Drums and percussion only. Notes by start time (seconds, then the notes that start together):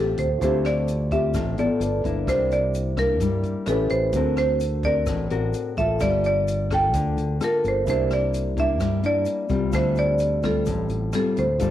0.17 kick, closed hi-hat, shaker
0.41 kick, closed hi-hat, shaker
0.65 cross-stick, closed hi-hat, shaker
0.88 closed hi-hat, shaker
1.11 kick, closed hi-hat, shaker
1.34 kick, cross-stick, closed hi-hat, shaker
1.58 closed hi-hat, shaker
1.81 closed hi-hat, shaker
2.04 kick, closed hi-hat, shaker
2.27 kick, cross-stick, closed hi-hat, shaker
2.51 closed hi-hat, shaker
2.74 closed hi-hat, shaker
2.97 kick, cross-stick, closed hi-hat, shaker
3.20 kick, closed hi-hat, shaker
3.44 closed hi-hat, shaker
3.66 cross-stick, closed hi-hat, shaker
3.89 closed hi-hat, shaker
4.13 kick, closed hi-hat, shaker
4.37 cross-stick, closed hi-hat, shaker
4.60 closed hi-hat, shaker
4.83 kick, closed hi-hat, shaker
5.07 kick, cross-stick, closed hi-hat, shaker
5.30 closed hi-hat, shaker
5.53 closed hi-hat, shaker
5.77 kick, closed hi-hat, shaker
6.00 kick, cross-stick, closed hi-hat, shaker
6.24 closed hi-hat, shaker
6.48 closed hi-hat, shaker
6.70 kick, cross-stick, closed hi-hat, shaker
6.93 kick, closed hi-hat, shaker
7.18 closed hi-hat, shaker
7.41 cross-stick, closed hi-hat, shaker
7.64 closed hi-hat, shaker
7.87 kick, closed hi-hat, shaker
8.11 cross-stick, closed hi-hat, shaker
8.34 closed hi-hat, shaker
8.57 kick, closed hi-hat, shaker
8.80 kick, cross-stick, closed hi-hat, shaker
9.03 closed hi-hat, shaker
9.26 closed hi-hat, shaker
9.49 kick, closed hi-hat, shaker
9.72 kick, cross-stick, closed hi-hat, shaker
9.96 closed hi-hat, shaker
10.18 closed hi-hat, shaker
10.43 kick, cross-stick, closed hi-hat, shaker
10.66 kick, closed hi-hat, shaker
10.89 closed hi-hat, shaker
11.12 cross-stick, closed hi-hat, shaker
11.37 closed hi-hat, shaker
11.59 kick, closed hi-hat, shaker